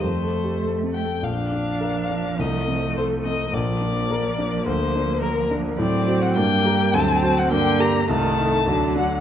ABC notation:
X:1
M:2/4
L:1/16
Q:1/4=104
K:Bb
V:1 name="Violin"
c4 z2 g2 | f8 | e4 c2 e2 | d8 |
c4 B2 z2 | [K:Gm] d3 ^f g4 | a3 ^f g2 b2 | a6 ^f2 |]
V:2 name="Grand piano"
(3F,,2 A2 G2 (3A2 C2 A2 | B,,,2 D2 B2 D2 | C,,2 C2 A2 C2 | B,,,2 D2 B2 D2 |
D,,2 D2 B2 D2 | [K:Gm] A,,2 [^Fc]2 G,,2 [GB]2 | D,,2 [^Fc]2 G,,2 [GB]2 | C,,2 [EA]2 D,,2 [D^F]2 |]
V:3 name="Viola"
z8 | D8 | A,8 | B,8- |
B,8 | [K:Gm] C4 B,4 | C4 B,4 | A,4 ^F,4 |]
V:4 name="Cello" clef=bass
A,6 z2 | F,8- | F,8 | F,8- |
F,8 | [K:Gm] ^F,4 G,4 | ^F,4 D,4 | E,4 D,4 |]